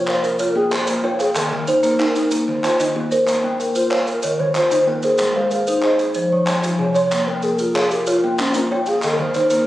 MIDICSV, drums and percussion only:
0, 0, Header, 1, 2, 480
1, 0, Start_track
1, 0, Tempo, 319489
1, 2040, Time_signature, 12, 3, 24, 8
1, 14524, End_track
2, 0, Start_track
2, 0, Title_t, "Drums"
2, 110, Note_on_c, 9, 39, 61
2, 260, Note_off_c, 9, 39, 0
2, 359, Note_on_c, 9, 70, 63
2, 509, Note_off_c, 9, 70, 0
2, 587, Note_on_c, 9, 70, 83
2, 738, Note_off_c, 9, 70, 0
2, 1072, Note_on_c, 9, 70, 60
2, 1086, Note_on_c, 9, 39, 61
2, 1222, Note_off_c, 9, 70, 0
2, 1236, Note_off_c, 9, 39, 0
2, 1305, Note_on_c, 9, 70, 80
2, 1317, Note_on_c, 9, 39, 18
2, 1455, Note_off_c, 9, 70, 0
2, 1468, Note_off_c, 9, 39, 0
2, 1798, Note_on_c, 9, 70, 63
2, 1803, Note_on_c, 9, 39, 17
2, 1948, Note_off_c, 9, 70, 0
2, 1953, Note_off_c, 9, 39, 0
2, 2035, Note_on_c, 9, 39, 56
2, 2036, Note_on_c, 9, 70, 80
2, 2186, Note_off_c, 9, 39, 0
2, 2186, Note_off_c, 9, 70, 0
2, 2274, Note_on_c, 9, 39, 19
2, 2424, Note_off_c, 9, 39, 0
2, 2515, Note_on_c, 9, 70, 62
2, 2665, Note_off_c, 9, 70, 0
2, 2753, Note_on_c, 9, 70, 70
2, 2763, Note_on_c, 9, 39, 19
2, 2904, Note_off_c, 9, 70, 0
2, 2913, Note_off_c, 9, 39, 0
2, 3005, Note_on_c, 9, 39, 61
2, 3155, Note_off_c, 9, 39, 0
2, 3238, Note_on_c, 9, 70, 66
2, 3255, Note_on_c, 9, 39, 19
2, 3389, Note_off_c, 9, 70, 0
2, 3405, Note_off_c, 9, 39, 0
2, 3473, Note_on_c, 9, 70, 92
2, 3623, Note_off_c, 9, 70, 0
2, 3729, Note_on_c, 9, 39, 18
2, 3879, Note_off_c, 9, 39, 0
2, 3967, Note_on_c, 9, 39, 56
2, 3975, Note_on_c, 9, 70, 56
2, 4117, Note_off_c, 9, 39, 0
2, 4125, Note_off_c, 9, 70, 0
2, 4205, Note_on_c, 9, 70, 84
2, 4206, Note_on_c, 9, 39, 18
2, 4355, Note_off_c, 9, 70, 0
2, 4356, Note_off_c, 9, 39, 0
2, 4681, Note_on_c, 9, 70, 59
2, 4831, Note_off_c, 9, 70, 0
2, 4920, Note_on_c, 9, 39, 55
2, 4926, Note_on_c, 9, 70, 81
2, 5071, Note_off_c, 9, 39, 0
2, 5076, Note_off_c, 9, 70, 0
2, 5413, Note_on_c, 9, 70, 60
2, 5563, Note_off_c, 9, 70, 0
2, 5637, Note_on_c, 9, 70, 69
2, 5787, Note_off_c, 9, 70, 0
2, 5877, Note_on_c, 9, 39, 58
2, 6027, Note_off_c, 9, 39, 0
2, 6116, Note_on_c, 9, 70, 62
2, 6266, Note_off_c, 9, 70, 0
2, 6347, Note_on_c, 9, 70, 83
2, 6497, Note_off_c, 9, 70, 0
2, 6829, Note_on_c, 9, 70, 57
2, 6838, Note_on_c, 9, 39, 58
2, 6980, Note_off_c, 9, 70, 0
2, 6989, Note_off_c, 9, 39, 0
2, 7079, Note_on_c, 9, 70, 78
2, 7080, Note_on_c, 9, 39, 18
2, 7229, Note_off_c, 9, 70, 0
2, 7230, Note_off_c, 9, 39, 0
2, 7548, Note_on_c, 9, 70, 62
2, 7571, Note_on_c, 9, 39, 17
2, 7698, Note_off_c, 9, 70, 0
2, 7721, Note_off_c, 9, 39, 0
2, 7780, Note_on_c, 9, 70, 84
2, 7803, Note_on_c, 9, 39, 64
2, 7930, Note_off_c, 9, 70, 0
2, 7954, Note_off_c, 9, 39, 0
2, 8277, Note_on_c, 9, 70, 62
2, 8427, Note_off_c, 9, 70, 0
2, 8520, Note_on_c, 9, 70, 76
2, 8670, Note_off_c, 9, 70, 0
2, 8752, Note_on_c, 9, 39, 57
2, 8902, Note_off_c, 9, 39, 0
2, 8999, Note_on_c, 9, 70, 61
2, 9149, Note_off_c, 9, 70, 0
2, 9230, Note_on_c, 9, 70, 82
2, 9380, Note_off_c, 9, 70, 0
2, 9718, Note_on_c, 9, 39, 68
2, 9733, Note_on_c, 9, 70, 55
2, 9869, Note_off_c, 9, 39, 0
2, 9884, Note_off_c, 9, 70, 0
2, 9964, Note_on_c, 9, 39, 19
2, 9969, Note_on_c, 9, 70, 74
2, 10114, Note_off_c, 9, 39, 0
2, 10119, Note_off_c, 9, 70, 0
2, 10448, Note_on_c, 9, 39, 18
2, 10448, Note_on_c, 9, 70, 58
2, 10598, Note_off_c, 9, 39, 0
2, 10598, Note_off_c, 9, 70, 0
2, 10687, Note_on_c, 9, 70, 70
2, 10697, Note_on_c, 9, 39, 62
2, 10837, Note_off_c, 9, 70, 0
2, 10847, Note_off_c, 9, 39, 0
2, 11152, Note_on_c, 9, 70, 54
2, 11302, Note_off_c, 9, 70, 0
2, 11396, Note_on_c, 9, 70, 62
2, 11546, Note_off_c, 9, 70, 0
2, 11655, Note_on_c, 9, 39, 60
2, 11805, Note_off_c, 9, 39, 0
2, 11885, Note_on_c, 9, 70, 54
2, 12035, Note_off_c, 9, 70, 0
2, 12117, Note_on_c, 9, 70, 73
2, 12267, Note_off_c, 9, 70, 0
2, 12593, Note_on_c, 9, 70, 55
2, 12610, Note_on_c, 9, 39, 64
2, 12743, Note_off_c, 9, 70, 0
2, 12760, Note_off_c, 9, 39, 0
2, 12832, Note_on_c, 9, 70, 65
2, 12859, Note_on_c, 9, 39, 20
2, 12982, Note_off_c, 9, 70, 0
2, 13010, Note_off_c, 9, 39, 0
2, 13310, Note_on_c, 9, 70, 49
2, 13336, Note_on_c, 9, 39, 18
2, 13460, Note_off_c, 9, 70, 0
2, 13486, Note_off_c, 9, 39, 0
2, 13556, Note_on_c, 9, 39, 55
2, 13557, Note_on_c, 9, 70, 67
2, 13706, Note_off_c, 9, 39, 0
2, 13708, Note_off_c, 9, 70, 0
2, 13809, Note_on_c, 9, 39, 17
2, 13959, Note_off_c, 9, 39, 0
2, 14035, Note_on_c, 9, 70, 52
2, 14056, Note_on_c, 9, 39, 19
2, 14185, Note_off_c, 9, 70, 0
2, 14207, Note_off_c, 9, 39, 0
2, 14274, Note_on_c, 9, 70, 61
2, 14288, Note_on_c, 9, 39, 20
2, 14424, Note_off_c, 9, 70, 0
2, 14438, Note_off_c, 9, 39, 0
2, 14524, End_track
0, 0, End_of_file